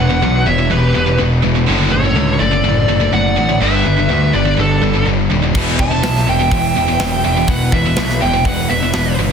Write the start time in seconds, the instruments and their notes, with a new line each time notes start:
Already playing: lead electric guitar B4 F#5
0.00 picked electric bass E1, overdriven electric guitar E2 B2 E3
0.10 distorted electric guitar E2 B2
0.22 picked electric bass B1, distorted electric guitar E2 B2, overdriven electric guitar E3
0.46 picked electric bass E1, distorted electric guitar E2 B2, overdriven electric guitar E3, lead electric guitar C#5 E5
0.59 distorted electric guitar E2 B2
0.70 picked electric bass E1, distorted electric guitar E2 B2, overdriven electric guitar E3, lead electric guitar G4 B4
0.95 picked electric bass E1, distorted electric guitar E2 B2, overdriven electric guitar E3
1.07 distorted electric guitar E2 B2
1.19 picked electric bass E1, distorted electric guitar E2 B2, overdriven electric guitar E3
1.44 picked electric bass E1, distorted electric guitar E2 B2, overdriven electric guitar E3
1.56 distorted electric guitar E2 B2
1.68 picked electric bass F#1, distorted electric guitar D2 A2 D3
1.92 picked electric bass F#1, distorted electric guitar D2 A2, overdriven electric guitar D3, lead electric guitar A4 C#5
2.05 distorted electric guitar D2 A2
2.16 picked electric bass C#2, distorted electric guitar D2 A2, overdriven electric guitar D3
2.39 picked electric bass F#1, distorted electric guitar D2 A2, overdriven electric guitar D3, lead electric guitar A4 D5
2.53 distorted electric guitar D2 A2
2.64 picked electric bass F#1, distorted electric guitar D2 A2, overdriven electric guitar D3
2.88 picked electric bass F#1, distorted electric guitar D2 A2, overdriven electric guitar D3
3.01 distorted electric guitar D2 A2
3.13 picked electric bass F#1, distorted electric guitar D2 A2, overdriven electric guitar D3, lead electric guitar D5 F#5
3.37 picked electric bass A1, distorted electric guitar D2 A2, overdriven electric guitar D3
3.49 distorted electric guitar D2 A2
3.61 picked electric bass G1, distorted electric guitar G2 D3 G3, lead electric guitar B4 E5
3.86 picked electric bass G1, distorted electric guitar G2 D3, overdriven electric guitar G3
3.99 distorted electric guitar G2 D3
4.10 picked electric bass D2, distorted electric guitar G2 D3, overdriven electric guitar G3
4.33 picked electric bass G1, distorted electric guitar G2 D3, overdriven electric guitar G3, lead electric guitar B4 D5
4.47 distorted electric guitar G2 D3
4.58 picked electric bass G1, distorted electric guitar G2 D3, overdriven electric guitar G3, lead electric guitar D4 A4
4.82 picked electric bass G1, distorted electric guitar G2 D3, overdriven electric guitar G3
4.95 distorted electric guitar G2 D3
5.06 picked electric bass G1, distorted electric guitar G2 D3, overdriven electric guitar G3
5.31 picked electric bass D#1, distorted electric guitar G2 D3, overdriven electric guitar G3
5.43 distorted electric guitar G2 D3
5.55 picked electric bass E1, distorted electric guitar E2 B2 E3, kick, crash
5.79 picked electric bass E1, distorted electric guitar E2 B2, overdriven electric guitar E3, lead electric guitar E5 A5, kick
5.91 distorted electric guitar E2 B2
6.03 picked electric bass B1, distorted electric guitar E2 B2, overdriven electric guitar E3, snare, open hi-hat
6.16 snare
6.27 picked electric bass E1, distorted electric guitar E2 B2, overdriven electric guitar E3, lead electric guitar E5 G5
6.40 distorted electric guitar E2 B2
6.51 picked electric bass E1, distorted electric guitar E2 B2, overdriven electric guitar E3, kick, open hi-hat
6.75 picked electric bass E1, distorted electric guitar E2 B2, overdriven electric guitar E3
6.88 distorted electric guitar E2 B2
7.00 picked electric bass E1, distorted electric guitar E2 B2, overdriven electric guitar E3, snare, open hi-hat
7.24 picked electric bass E1, distorted electric guitar E2 B2, overdriven electric guitar E3, lead electric guitar E5 G5
7.37 distorted electric guitar E2 B2
7.48 picked electric bass E1, distorted electric guitar E2 B2, overdriven electric guitar E3, lead electric guitar B4 F#5, kick, open hi-hat
7.72 picked electric bass E1, distorted electric guitar E2 B2, overdriven electric guitar E3, lead electric guitar B4 E5, kick
7.85 distorted electric guitar E2 B2
7.96 picked electric bass B1, distorted electric guitar E2 B2, overdriven electric guitar E3, snare, open hi-hat
8.09 snare
8.21 picked electric bass E1, distorted electric guitar E2 B2, overdriven electric guitar E3, lead electric guitar E5 G5
8.33 distorted electric guitar E2 B2
8.45 picked electric bass E1, distorted electric guitar E2 B2, overdriven electric guitar E3, lead electric guitar B4 F#5, kick, open hi-hat
8.70 picked electric bass E1, distorted electric guitar E2 B2, overdriven electric guitar E3, lead electric guitar B4 E5
8.83 distorted electric guitar E2 B2
8.93 picked electric bass E1, distorted electric guitar E2 B2, overdriven electric guitar E3, snare, open hi-hat
9.18 picked electric bass G1, distorted electric guitar E2 B2, overdriven electric guitar E3